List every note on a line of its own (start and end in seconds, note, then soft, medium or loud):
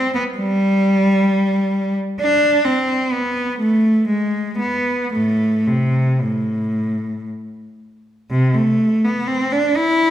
0.00 0.14 C4 medium
0.15 0.23 B3 medium
0.38 1.94 G3 medium
2.20 2.63 D4 medium
2.65 3.12 C4 medium
3.12 3.61 B3 medium
3.59 4.08 A3 medium
4.08 4.59 G#3 medium
4.58 5.11 B3 medium
5.13 5.64 A2 soft
5.13 5.66 A3 medium
5.67 6.21 C3 medium
6.21 7.26 A2 soft
8.31 8.55 C3 medium
8.54 9.04 A3 medium
9.05 9.29 B3 medium
9.27 9.52 C4 medium
9.52 9.76 D4 medium
9.76 10.10 E4 medium